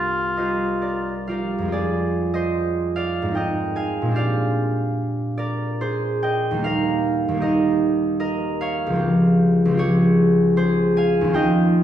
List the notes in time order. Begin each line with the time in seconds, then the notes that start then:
Already playing: C2 G3 F4 G4 A#4 C5 F5 G5
0.37 G3 F4 G4 A#4 C5 D#5
0.82 A#4 D5
1.27 G3 F4 G4 A#4 D5 F5
1.58 F2 G#3
1.65 C4 F4
1.72 G#4 D5
2.34 C5 D#5
2.96 D5 F5
3.22 G#2 G#3
3.28 C4 D#4
3.34 A#4 D#5 G5
3.76 F5 G#5
4.02 A#2 G#3
4.08 C4 D4
4.14 G4 D5 F5
5.37 A#4 D5
5.81 G#4 C5
6.23 D#5 G5
6.51 D#2 G3
6.57 A#3 D#4
6.62 G4 A#4 F5
7.28 D#2 G3
7.35 A#3 D#4
7.40 G4 A#4 D#5
8.20 A#4 D#5
8.61 C#5 F5
8.86 C#2 F3
8.93 C4 F4
8.99 G4
9.65 C#2 F3
9.71 C4 F4
9.77 G4 G#4 C#5
10.57 G#4 C5
10.97 F5 G#5
11.21 D#2 F3
11.27 C4 C#4
11.33 F4 D#5 G5